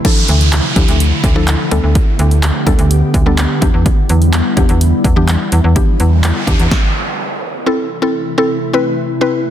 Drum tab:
CC |x---------------|----------------|----------------|----------------|
HH |x-xxx-xxx-x-x-x-|x-xxx-xxx-x-x-x-|x-xxx-xxx-x-x-x-|x-x-x-xx--------|
CP |----x-------x---|----x-------x---|----x-------x---|----x-----------|
SD |----------------|----------------|----------------|--------o-------|
BD |o-----o---o-----|o-----o---o---o-|o-----o---o-----|o-----o-o-------|

CC |----------------|
HH |----------------|
CP |----------------|
SD |----------------|
BD |----------------|